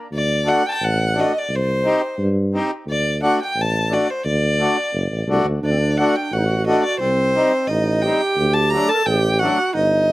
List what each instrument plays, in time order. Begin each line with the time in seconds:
0.11 tuba D2, violin D5
0.46 accordion A3 D4 F#4, violin F#5
0.66 violin G5 A5
0.74 violin G5
0.81 tuba A1, violin F#5
1.15 accordion A3 D4 F#4
1.20 violin D#5
1.38 violin D5
1.49 tuba C2
1.56 violin C5
1.83 accordion C4 D#4 G4
2.18 tuba G2
2.54 accordion C4 D#4 G4
2.86 tuba D2
2.90 violin D5
3.22 accordion A3 D4 F#4, violin F#5
3.43 violin G5
3.55 tuba A1
3.61 violin A5
3.89 accordion A3 D4 F#4, violin D5
4.10 violin C5
4.25 tuba D2, violin D5
4.59 accordion A3 D4 F#4
4.94 tuba F#1
5.11 tuba A1
5.27 tuba C2, accordion A3 D4 F#4
5.44 tuba D2
5.62 tuba D2, clarinet D4, violin D5
5.72 clarinet C4
5.79 clarinet D4
5.97 accordion A3 D4 F#4, violin F#5
6.16 violin G5
6.32 tuba A1, clarinet F#4, violin F#5
6.38 clarinet D#4
6.45 clarinet F#4
6.67 accordion A3 D4 F#4, violin D#5
6.84 violin D5
7.00 tuba C2, clarinet C4, violin C5
7.35 accordion G3 C4 D#4
7.68 tuba A1, clarinet D#4, violin D#5
8.02 accordion G3 C4 D#4, clarinet G4, violin G5
8.36 tuba D2
8.54 violin A5
8.70 accordion F#3 A3, violin A#5
8.74 accordion D4
8.89 clarinet A4, violin A5
8.94 clarinet A4 A#4
9.05 tuba A1, clarinet G4, violin G5
9.39 accordion F#3 A3 D4, clarinet F#4, violin F#5
9.73 tuba G1, clarinet D#4, violin D#5